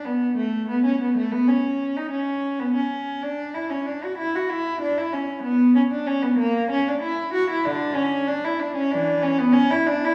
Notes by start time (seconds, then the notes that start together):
0.05 B3
0.37 A3
0.69 B3
0.85 C#4
1.01 B3
1.17 A3
1.32 B3
1.48 C#4
1.96 D#4
2.11 C#4
2.59 B3
2.75 C#4
3.23 D4
3.54 E4
3.70 C#4
3.86 D4
4.04 F#4
4.17 E4
4.36 F#4
4.49 E4
4.81 D4
4.98 E4
5.13 C#4
5.43 B3
5.75 C#4
5.92 D4
6.06 C#4
6.23 B3
6.38 A#3
6.71 C#4
6.88 D4
7.02 E4
7.34 F#4
7.50 E4
7.65 D3 D4
7.95 C#4
8.27 D4
8.44 E4
8.60 D4
8.76 C#4
8.91 E3 D4
9.23 C#4
9.38 B3
9.53 C#4
9.70 E4
9.87 D4
10.05 E4